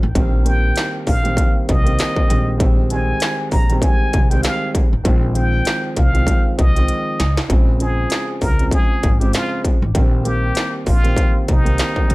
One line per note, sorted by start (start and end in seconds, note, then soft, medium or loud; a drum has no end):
0.03 0.14 A1 loud
0.15 0.70 A#1 loud
0.15 0.42 D#3 loud
0.15 0.43 G3 medium
0.15 0.44 A#3 medium
0.15 0.45 C4 loud
0.15 kick loud
0.15 closed hi-hat medium
0.44 1.17 D#3 medium
0.44 1.17 G3 medium
0.44 1.18 A#3 medium
0.44 1.18 C4 loud
0.44 1.03 G5 medium
0.44 closed hi-hat medium
0.76 snare loud
0.76 clap medium
0.76 closed hi-hat loud
1.07 1.35 A#1 medium
1.07 1.64 F5 medium
1.07 kick loud
1.07 open hi-hat medium
1.23 1.80 D#3 medium
1.23 1.80 G3 medium
1.23 1.80 A#3 medium
1.23 1.81 C4 loud
1.23 closed hi-hat medium
1.37 kick loud
1.37 closed hi-hat medium
1.69 1.96 C2 loud
1.69 2.56 D#5 medium
1.69 kick loud
1.69 closed hi-hat medium
1.84 2.25 D#3 medium
1.84 2.26 G3 medium
1.84 2.26 A#3 medium
1.84 2.27 C4 loud
1.84 closed hi-hat medium
1.99 snare loud
1.99 clap loud
1.99 closed hi-hat medium
2.16 kick medium
2.28 3.12 A#1 loud
2.28 2.56 D#3 loud
2.28 2.57 G3 medium
2.28 2.58 G#3 medium
2.28 2.59 C4 loud
2.28 closed hi-hat medium
2.58 2.87 D#3 loud
2.58 2.88 G3 medium
2.58 2.88 G#3 medium
2.58 2.89 C4 loud
2.58 kick loud
2.58 closed hi-hat medium
2.90 3.63 D#3 loud
2.90 3.63 G3 medium
2.90 3.63 G#3 medium
2.90 3.64 C4 loud
2.90 3.49 G#5 medium
2.90 closed hi-hat medium
3.20 snare loud
3.20 clap medium
3.20 closed hi-hat medium
3.51 3.79 A#1 medium
3.51 3.79 A#5 medium
3.51 kick loud
3.51 open hi-hat medium
3.69 4.25 D#3 loud
3.69 4.26 G3 medium
3.69 4.26 G#3 medium
3.69 4.26 C4 loud
3.69 closed hi-hat soft
3.82 4.28 G#5 medium
3.82 kick loud
3.82 closed hi-hat loud
4.13 4.41 C2 medium
4.13 kick loud
4.13 closed hi-hat medium
4.30 4.86 D#3 medium
4.30 4.86 G3 medium
4.30 4.87 G#3 medium
4.30 4.87 C4 loud
4.30 4.42 G5 medium
4.30 closed hi-hat medium
4.43 4.71 F5 medium
4.43 snare loud
4.43 clap loud
4.43 closed hi-hat medium
4.75 kick loud
4.75 closed hi-hat medium
4.93 5.04 A1 medium
5.04 5.60 A#1 loud
5.04 5.32 D#3 medium
5.04 5.33 F3 medium
5.04 5.33 G#3 medium
5.04 5.34 C4 loud
5.04 kick loud
5.04 closed hi-hat medium
5.33 6.06 D#3 medium
5.33 6.07 F3 medium
5.33 6.07 G#3 medium
5.33 6.08 C4 loud
5.33 5.94 G5 medium
5.33 closed hi-hat medium
5.65 snare loud
5.65 clap medium
5.65 closed hi-hat medium
5.97 6.24 C2 medium
5.97 6.54 F5 medium
5.97 kick loud
5.97 closed hi-hat medium
6.13 6.69 D#3 medium
6.13 6.70 F3 medium
6.13 6.70 G#3 medium
6.13 6.71 C4 loud
6.13 closed hi-hat soft
6.27 kick loud
6.27 closed hi-hat loud
6.58 6.86 C2 medium
6.58 7.46 D#5 medium
6.58 kick loud
6.58 closed hi-hat medium
6.75 7.16 D#3 medium
6.75 7.17 F3 medium
6.75 7.17 G#3 medium
6.75 7.17 C4 loud
6.75 closed hi-hat medium
6.88 closed hi-hat medium
7.20 7.36 C#2 medium
7.20 snare medium
7.20 closed hi-hat medium
7.37 snare medium
7.48 8.05 A#1 loud
7.48 7.78 C#3 loud
7.48 7.78 F3 medium
7.48 7.79 G#3 medium
7.48 7.79 C4 loud
7.48 kick loud
7.48 closed hi-hat medium
7.79 8.52 C#3 loud
7.79 8.52 F3 medium
7.79 8.53 G#3 medium
7.79 8.53 C4 loud
7.79 8.39 G#4 medium
7.79 closed hi-hat medium
8.10 snare loud
8.10 clap medium
8.10 closed hi-hat medium
8.41 8.69 C#2 medium
8.41 8.69 A#4 medium
8.41 kick loud
8.41 open hi-hat medium
8.59 9.15 C#3 medium
8.59 9.15 F3 medium
8.59 9.16 G#3 medium
8.59 9.16 C4 medium
8.59 closed hi-hat soft
8.71 9.19 G#4 medium
8.71 kick loud
8.71 closed hi-hat loud
9.03 9.31 G#1 medium
9.03 kick loud
9.03 closed hi-hat medium
9.19 9.76 C#3 medium
9.19 9.76 F3 medium
9.19 9.76 G#3 medium
9.19 9.77 C4 loud
9.19 9.32 G4 medium
9.19 closed hi-hat medium
9.33 9.61 F4 loud
9.33 snare loud
9.33 clap loud
9.33 closed hi-hat medium
9.64 kick medium
9.64 closed hi-hat medium
9.82 9.94 A1 medium
9.94 10.50 A#1 loud
9.94 10.22 D#3 loud
9.94 10.23 G3 medium
9.94 10.23 A#3 medium
9.94 10.24 C4 loud
9.94 kick loud
9.94 closed hi-hat medium
10.23 10.96 D#3 medium
10.23 10.97 G3 medium
10.23 10.97 A#3 medium
10.23 10.97 C4 loud
10.23 10.83 G4 medium
10.23 closed hi-hat medium
10.55 snare loud
10.55 clap medium
10.55 closed hi-hat medium
10.86 11.14 A#1 medium
10.86 11.44 F4 medium
10.86 kick medium
10.86 open hi-hat medium
11.03 11.59 D#3 loud
11.03 11.60 G3 medium
11.03 11.60 A#3 medium
11.03 11.61 C4 loud
11.03 closed hi-hat soft
11.16 kick loud
11.16 closed hi-hat loud
11.48 11.76 C2 loud
11.48 12.15 D#4 medium
11.48 kick loud
11.48 closed hi-hat medium
11.63 12.05 D#3 medium
11.63 12.05 G3 medium
11.63 12.06 A#3 medium
11.63 12.06 C4 loud
11.63 closed hi-hat medium
11.78 snare loud
11.78 clap loud
11.78 closed hi-hat medium
11.96 kick medium
12.08 12.15 A#1 loud
12.08 12.15 D#3 medium
12.08 12.15 G3 medium
12.08 12.15 G#3 medium
12.08 12.15 C4 loud
12.08 closed hi-hat medium